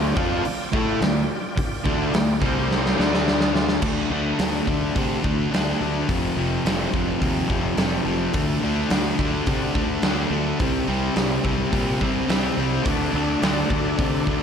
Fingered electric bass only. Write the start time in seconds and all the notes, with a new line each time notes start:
Already playing: D2
0.16 F2
0.45 muted fingered electric bass stroke
0.74 A2
1.01 D2
1.57 muted fingered electric bass stroke
1.86 D2
2.14 D2
2.41 C2
2.99 D2
3.82 D2
4.10 D2
4.39 D2
4.67 D2
4.96 C3
5.24 D2
5.53 D2
5.81 D2
6.09 F1
6.37 F1
6.65 F1
6.94 F1
7.22 D#2
7.50 F1
7.77 F1
8.05 F1
8.34 D2
8.63 D2
8.90 D2
9.19 D2
9.47 C3
9.75 D2
10.03 D2
10.30 D2
10.60 C2
10.88 C2
11.16 C2
11.44 C2
11.73 A#2
12.02 C2
12.29 C2
12.57 C2
12.86 D2
13.14 D2
13.42 D2
13.70 D2
13.99 C3
14.27 D2